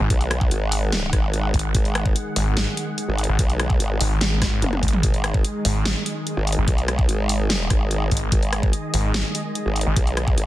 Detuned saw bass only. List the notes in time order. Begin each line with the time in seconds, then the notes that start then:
0.00 G#1
1.54 G#1
2.36 G#1
3.29 G#1
4.01 G#1
4.42 G#1
4.83 G#1
5.65 G#1
6.58 G#1
8.12 G#1
8.94 G#1
9.87 G#1